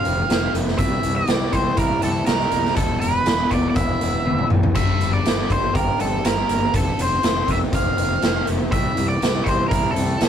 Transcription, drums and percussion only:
0.05 closed hi-hat medium
0.30 snare loud
0.30 closed hi-hat medium
0.55 closed hi-hat medium
0.68 snare soft
0.78 kick medium
0.78 closed hi-hat medium
1.03 closed hi-hat soft
1.27 snare medium
1.27 closed hi-hat medium
1.53 kick medium
1.53 closed hi-hat medium
1.77 kick loud
1.77 closed hi-hat medium
2.02 closed hi-hat medium
2.26 snare loud
2.26 closed hi-hat medium
2.40 snare soft
2.52 closed hi-hat medium
2.65 snare soft
2.76 kick loud
2.76 closed hi-hat medium
3.01 closed hi-hat medium
3.26 snare loud
3.26 closed hi-hat medium
3.51 kick medium
3.51 closed hi-hat medium
3.75 kick loud
3.75 closed hi-hat medium
4.01 closed hi-hat medium
4.26 high tom medium
4.39 mid tom soft
4.50 mid tom medium
4.63 floor tom medium
4.75 kick loud
4.75 closed hi-hat medium
4.75 crash medium
5.01 closed hi-hat soft
5.26 snare medium
5.26 closed hi-hat medium
5.50 kick medium
5.50 closed hi-hat medium
5.75 kick loud
5.75 closed hi-hat medium
6.00 closed hi-hat medium
6.25 snare medium
6.25 closed hi-hat medium
6.49 closed hi-hat medium
6.74 kick loud
6.74 closed hi-hat medium
6.99 closed hi-hat medium
7.23 snare medium
7.23 closed hi-hat medium
7.48 kick medium
7.48 closed hi-hat medium
7.73 kick loud
7.73 closed hi-hat medium
7.98 closed hi-hat medium
8.22 snare loud
8.22 closed hi-hat medium
8.47 closed hi-hat medium
8.72 kick medium
8.72 closed hi-hat medium
8.97 closed hi-hat soft
9.22 snare medium
9.22 closed hi-hat medium
9.46 kick medium
9.46 closed hi-hat soft
9.71 kick loud
9.71 closed hi-hat medium
9.96 closed hi-hat medium
10.21 snare loud
10.21 closed hi-hat medium

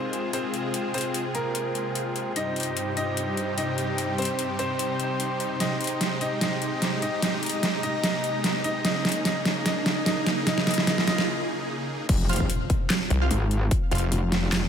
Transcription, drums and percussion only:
0.13 closed hi-hat soft
0.33 closed hi-hat medium
0.54 closed hi-hat soft
0.74 closed hi-hat medium
0.94 closed hi-hat soft
0.98 closed hi-hat medium
1.01 closed hi-hat medium
1.14 closed hi-hat medium
1.35 closed hi-hat soft
1.55 closed hi-hat medium
1.75 closed hi-hat soft
1.95 closed hi-hat medium
2.16 closed hi-hat soft
2.36 closed hi-hat medium
2.56 closed hi-hat soft
2.60 closed hi-hat medium
2.63 closed hi-hat medium
2.77 closed hi-hat medium
2.97 closed hi-hat soft
3.17 closed hi-hat medium
3.37 closed hi-hat soft
3.58 closed hi-hat medium
3.78 closed hi-hat soft
3.98 closed hi-hat medium
4.18 closed hi-hat soft
4.22 closed hi-hat medium
4.25 closed hi-hat medium
4.39 closed hi-hat medium
4.59 closed hi-hat soft
4.79 closed hi-hat medium
5.00 closed hi-hat soft
5.20 closed hi-hat medium
5.40 closed hi-hat soft
5.60 snare soft
5.60 closed hi-hat medium
5.81 closed hi-hat soft
5.84 closed hi-hat medium
5.87 closed hi-hat medium
6.01 snare medium
6.01 closed hi-hat medium
6.21 closed hi-hat soft
6.41 snare medium
6.41 closed hi-hat medium
6.62 closed hi-hat soft
6.82 snare medium
6.82 closed hi-hat medium
7.02 closed hi-hat soft
7.22 snare medium
7.22 closed hi-hat medium
7.43 closed hi-hat medium
7.46 closed hi-hat medium
7.49 closed hi-hat medium
7.63 snare medium
7.63 closed hi-hat medium
7.83 closed hi-hat soft
8.04 snare medium
8.04 closed hi-hat medium
8.24 closed hi-hat medium
8.44 snare medium
8.44 closed hi-hat medium
8.64 closed hi-hat soft
8.85 snare medium
8.85 closed hi-hat medium
9.05 snare medium
9.05 closed hi-hat medium
9.09 closed hi-hat medium
9.12 closed hi-hat medium
9.25 snare medium
9.25 closed hi-hat medium
9.45 snare medium
9.45 closed hi-hat medium
9.66 snare medium
9.66 closed hi-hat medium
9.86 snare medium
9.86 closed hi-hat medium
10.06 snare medium
10.06 closed hi-hat medium
10.27 snare medium
10.27 closed hi-hat medium
10.47 snare medium
10.47 closed hi-hat medium
10.58 snare medium
10.67 snare medium
10.67 closed hi-hat medium
10.71 closed hi-hat medium
10.74 closed hi-hat medium
10.78 snare medium
10.87 snare loud
10.87 closed hi-hat medium
10.98 snare medium
11.08 snare medium
11.08 closed hi-hat medium
11.18 snare medium
12.09 kick loud
12.09 closed hi-hat medium
12.09 crash loud
12.29 closed hi-hat medium
12.33 closed hi-hat medium
12.36 closed hi-hat medium
12.40 kick medium
12.50 closed hi-hat medium
12.70 kick loud
12.70 closed hi-hat medium
12.90 snare loud
12.90 clap medium
12.90 closed hi-hat medium
13.10 closed hi-hat medium
13.31 closed hi-hat medium
13.51 closed hi-hat medium
13.71 kick loud
13.71 closed hi-hat medium
13.91 closed hi-hat medium
13.95 closed hi-hat medium
13.98 closed hi-hat medium
14.12 closed hi-hat medium
14.32 snare medium
14.32 closed hi-hat medium
14.52 snare loud
14.52 clap loud
14.52 closed hi-hat medium

